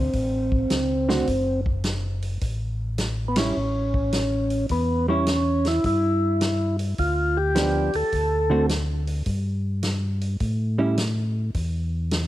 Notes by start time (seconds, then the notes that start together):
Already playing: C4
0.14 A1, kick, open hi-hat
0.52 kick
0.70 C#2, snare, closed hi-hat
1.09 D3 A3 C4 F#4, snare
1.27 F#1, kick, open hi-hat
1.66 kick
1.84 snare, closed hi-hat
2.22 open hi-hat
2.41 A1, kick, open hi-hat
2.98 snare, closed hi-hat
3.28 B3
3.36 G3 C#4 E4, snare, ride
3.56 A1
3.94 kick
4.12 snare, closed hi-hat
4.50 open hi-hat
4.69 E2 B3, kick, open hi-hat
5.08 G3 C#4 E4
5.27 snare, closed hi-hat
5.65 E4, snare, open hi-hat
5.84 G2 E4, kick, open hi-hat
6.41 snare, closed hi-hat
6.79 open hi-hat
6.98 D2 F4, kick, open hi-hat
7.37 G4
7.55 F3 B3 D4, snare, closed hi-hat
7.94 D2 A4, open hi-hat
8.12 D2, kick, open hi-hat
8.50 D3 A3 C4 F#4
8.69 snare, closed hi-hat
9.07 open hi-hat
9.26 G2, kick, open hi-hat
9.83 snare, closed hi-hat
10.21 open hi-hat
10.40 A2, kick, open hi-hat
10.78 G3 C#4 E4
10.98 snare, closed hi-hat
11.54 E2, kick, open hi-hat
12.11 snare, closed hi-hat